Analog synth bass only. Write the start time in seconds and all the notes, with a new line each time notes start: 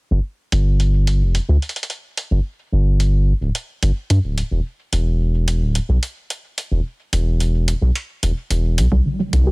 0.11 G1
0.52 G1
1.21 F1
1.49 D2
2.31 G1
2.72 G1
3.41 D1
3.83 G1
4.10 G2
4.24 D1
4.51 E1
4.93 E1
5.61 D1
5.89 B1
6.71 E1
7.13 E1
7.82 B1
8.23 E1
8.50 E1
8.78 B1
8.92 C2
9.33 C2